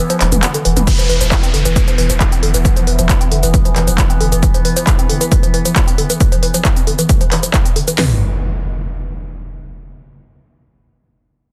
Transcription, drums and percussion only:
0.10 closed hi-hat medium
0.10 shaker soft
0.21 clap medium
0.21 open hi-hat loud
0.32 closed hi-hat medium
0.32 mid tom loud
0.32 shaker medium
0.43 clap loud
0.43 closed hi-hat loud
0.43 shaker medium
0.54 closed hi-hat medium
0.54 shaker soft
0.65 open hi-hat medium
0.77 closed hi-hat medium
0.77 mid tom medium
0.77 shaker medium
0.87 kick loud
0.87 closed hi-hat loud
0.87 crash loud
0.87 shaker medium
0.99 closed hi-hat medium
0.99 shaker soft
1.10 open hi-hat loud
1.21 closed hi-hat medium
1.21 shaker medium
1.32 kick loud
1.32 clap loud
1.32 closed hi-hat medium
1.32 shaker medium
1.43 closed hi-hat medium
1.43 shaker soft
1.54 open hi-hat medium
1.65 closed hi-hat medium
1.65 shaker medium
1.76 kick loud
1.76 closed hi-hat loud
1.76 shaker soft
1.88 closed hi-hat medium
1.88 shaker soft
1.98 open hi-hat loud
2.10 closed hi-hat medium
2.10 shaker medium
2.20 kick loud
2.20 clap loud
2.20 closed hi-hat loud
2.20 shaker medium
2.32 closed hi-hat medium
2.32 shaker soft
2.43 open hi-hat medium
2.54 closed hi-hat medium
2.54 shaker medium
2.65 kick loud
2.65 closed hi-hat loud
2.65 shaker medium
2.77 closed hi-hat medium
2.77 shaker soft
2.87 open hi-hat loud
2.99 closed hi-hat medium
2.99 shaker medium
3.09 kick loud
3.09 clap loud
3.09 closed hi-hat loud
3.09 shaker soft
3.21 closed hi-hat medium
3.21 shaker soft
3.32 open hi-hat loud
3.43 closed hi-hat medium
3.43 shaker medium
3.54 kick loud
3.54 closed hi-hat loud
3.54 shaker soft
3.65 closed hi-hat medium
3.65 shaker soft
3.76 clap medium
3.76 open hi-hat loud
3.88 closed hi-hat medium
3.88 shaker medium
3.98 kick loud
3.98 clap loud
3.98 closed hi-hat loud
3.98 shaker medium
4.10 closed hi-hat medium
4.10 shaker soft
4.21 open hi-hat medium
4.32 closed hi-hat medium
4.32 shaker medium
4.43 kick loud
4.43 closed hi-hat medium
4.43 shaker medium
4.54 closed hi-hat medium
4.54 shaker soft
4.65 open hi-hat loud
4.77 closed hi-hat medium
4.77 shaker medium
4.87 kick loud
4.87 clap loud
4.87 closed hi-hat medium
4.87 shaker medium
4.99 closed hi-hat medium
4.99 shaker soft
5.10 open hi-hat medium
5.21 closed hi-hat medium
5.21 shaker medium
5.32 kick loud
5.32 closed hi-hat loud
5.32 shaker medium
5.43 closed hi-hat medium
5.43 shaker soft
5.54 open hi-hat loud
5.65 closed hi-hat medium
5.65 shaker medium
5.76 kick loud
5.76 clap loud
5.76 closed hi-hat medium
5.76 shaker medium
5.88 closed hi-hat medium
5.88 shaker soft
5.98 open hi-hat loud
6.10 closed hi-hat medium
6.10 shaker medium
6.20 kick loud
6.20 closed hi-hat medium
6.20 shaker medium
6.32 closed hi-hat medium
6.32 shaker soft
6.43 open hi-hat loud
6.54 closed hi-hat medium
6.54 shaker medium
6.65 kick loud
6.65 clap loud
6.65 closed hi-hat medium
6.65 shaker soft
6.76 closed hi-hat medium
6.76 shaker soft
6.87 open hi-hat loud
6.99 closed hi-hat soft
6.99 shaker medium
7.09 kick loud
7.09 closed hi-hat medium
7.09 shaker medium
7.21 closed hi-hat soft
7.21 shaker soft
7.32 clap medium
7.32 open hi-hat loud
7.43 closed hi-hat medium
7.43 shaker medium
7.54 kick loud
7.54 clap loud
7.54 closed hi-hat medium
7.54 shaker medium
7.65 closed hi-hat medium
7.65 shaker soft
7.76 open hi-hat medium
7.88 closed hi-hat medium
7.88 shaker medium
7.98 snare loud
7.98 floor tom loud
7.98 open hi-hat medium

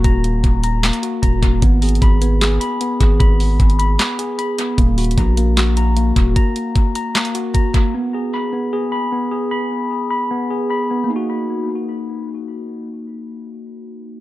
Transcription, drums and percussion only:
0.04 kick loud
0.04 closed hi-hat medium
0.24 closed hi-hat medium
0.44 kick loud
0.44 closed hi-hat medium
0.64 closed hi-hat medium
0.83 snare loud
0.83 clap loud
0.83 closed hi-hat medium
0.93 closed hi-hat medium
1.03 closed hi-hat medium
1.23 kick loud
1.23 closed hi-hat medium
1.43 kick loud
1.43 closed hi-hat medium
1.62 kick loud
1.62 closed hi-hat medium
1.82 closed hi-hat soft
1.82 open hi-hat medium
1.89 closed hi-hat medium
1.95 closed hi-hat medium
2.02 kick loud
2.02 closed hi-hat medium
2.22 closed hi-hat medium
2.41 snare loud
2.41 clap loud
2.41 closed hi-hat medium
2.61 closed hi-hat medium
2.81 closed hi-hat medium
3.01 kick loud
3.01 closed hi-hat medium
3.20 kick loud
3.20 closed hi-hat medium
3.40 open hi-hat medium
3.60 kick loud
3.60 closed hi-hat medium
3.70 closed hi-hat soft
3.80 closed hi-hat medium
3.99 snare loud
3.99 clap loud
3.99 closed hi-hat medium
4.19 closed hi-hat medium
4.39 closed hi-hat medium
4.58 closed hi-hat medium
4.78 kick loud
4.78 closed hi-hat medium
4.98 closed hi-hat soft
4.98 open hi-hat medium
5.04 closed hi-hat medium
5.11 closed hi-hat medium
5.18 kick loud
5.18 closed hi-hat medium
5.37 closed hi-hat medium
5.57 snare loud
5.57 clap loud
5.57 closed hi-hat medium
5.77 closed hi-hat medium
5.97 closed hi-hat medium
6.16 kick loud
6.16 closed hi-hat medium
6.36 kick loud
6.36 closed hi-hat medium
6.56 closed hi-hat medium
6.76 kick loud
6.76 closed hi-hat medium
6.95 closed hi-hat medium
7.15 snare loud
7.15 clap loud
7.15 closed hi-hat medium
7.25 closed hi-hat medium
7.35 closed hi-hat medium
7.55 kick loud
7.55 closed hi-hat medium
7.74 kick loud
7.74 closed hi-hat medium

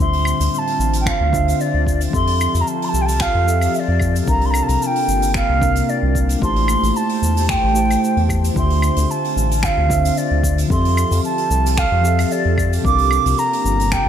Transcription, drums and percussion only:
0.00 shaker soft
0.13 open hi-hat medium
0.25 claves medium
0.25 shaker medium
0.40 open hi-hat medium
0.40 shaker medium
0.54 shaker soft
0.67 open hi-hat medium
0.80 shaker medium
0.93 open hi-hat medium
0.93 shaker medium
1.06 finger snap medium
1.06 kick loud
1.06 shaker soft
1.33 kick loud
1.33 shaker medium
1.48 open hi-hat medium
1.48 shaker medium
1.60 shaker soft
1.87 kick medium
1.87 shaker medium
2.01 open hi-hat medium
2.01 shaker medium
2.13 kick loud
2.13 shaker soft
2.27 open hi-hat medium
2.41 claves medium
2.41 shaker medium
2.55 open hi-hat medium
2.55 shaker medium
2.67 shaker soft
2.82 open hi-hat medium
2.94 shaker medium
3.08 open hi-hat medium
3.08 shaker medium
3.20 finger snap medium
3.20 kick loud
3.20 shaker medium
3.48 shaker medium
3.61 open hi-hat medium
3.61 claves medium
3.61 shaker medium
3.74 shaker soft
4.00 kick medium
4.00 claves medium
4.00 shaker medium
4.15 open hi-hat medium
4.15 shaker medium
4.28 kick loud
4.28 shaker medium
4.41 open hi-hat medium
4.54 claves medium
4.54 shaker medium
4.68 open hi-hat medium
4.68 shaker medium
4.82 shaker medium
4.96 open hi-hat medium
5.09 shaker medium
5.22 open hi-hat medium
5.22 shaker medium
5.34 finger snap medium
5.34 kick loud
5.34 shaker medium
5.62 kick loud
5.62 shaker medium
5.75 open hi-hat medium
5.75 shaker medium
5.89 shaker soft
6.15 kick medium
6.15 shaker medium
6.29 open hi-hat medium
6.29 shaker medium
6.42 kick loud
6.42 shaker soft
6.56 open hi-hat medium
6.68 claves medium
6.68 shaker medium
6.83 open hi-hat medium
6.83 shaker medium
6.96 shaker medium
7.09 open hi-hat medium
7.23 shaker medium
7.37 open hi-hat medium
7.37 shaker medium
7.49 finger snap medium
7.49 kick loud
7.49 shaker soft
7.76 shaker medium
7.90 open hi-hat medium
7.90 claves medium
7.90 shaker medium
8.04 shaker soft
8.17 open hi-hat soft
8.29 kick medium
8.29 claves medium
8.29 shaker medium
8.44 open hi-hat medium
8.44 shaker medium
8.56 kick loud
8.56 shaker soft
8.70 open hi-hat medium
8.82 claves medium
8.82 shaker medium
8.96 open hi-hat medium
8.96 shaker medium
9.11 shaker soft
9.24 open hi-hat medium
9.38 shaker medium
9.51 open hi-hat medium
9.51 shaker medium
9.63 finger snap medium
9.63 kick loud
9.63 shaker medium
9.90 kick loud
9.90 shaker medium
10.05 open hi-hat medium
10.05 shaker medium
10.17 shaker soft
10.43 kick medium
10.43 shaker medium
10.58 open hi-hat medium
10.58 shaker soft
10.70 kick loud
10.70 shaker soft
10.85 open hi-hat medium
10.97 claves medium
10.97 shaker medium
11.12 open hi-hat medium
11.12 shaker medium
11.25 shaker soft
11.38 open hi-hat medium
11.51 shaker medium
11.66 open hi-hat medium
11.66 shaker medium
11.77 finger snap medium
11.77 kick loud
11.77 shaker soft
12.05 shaker medium
12.18 open hi-hat medium
12.18 claves medium
12.18 shaker medium
12.31 shaker soft
12.58 kick medium
12.58 claves medium
12.58 shaker medium
12.73 open hi-hat medium
12.73 shaker medium
12.85 kick loud
12.85 shaker soft
12.98 open hi-hat medium
13.11 claves medium
13.11 shaker medium
13.26 open hi-hat medium
13.26 shaker medium
13.38 shaker soft
13.53 open hi-hat medium
13.66 shaker medium
13.79 open hi-hat medium
13.79 shaker medium
13.92 finger snap medium
13.92 kick loud
13.92 shaker soft

